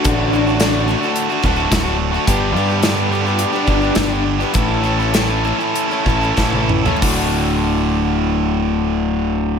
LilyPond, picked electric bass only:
\new Staff \with { instrumentName = "Picked electric bass" } { \clef bass \time 4/4 \key d \major \tempo 4 = 102 a,,2 r8 d,,8 d,,4 | g,,8 g,2 g,,8 g,,4 | a,,2 r8 a,,8 a,,4 | d,,1 | }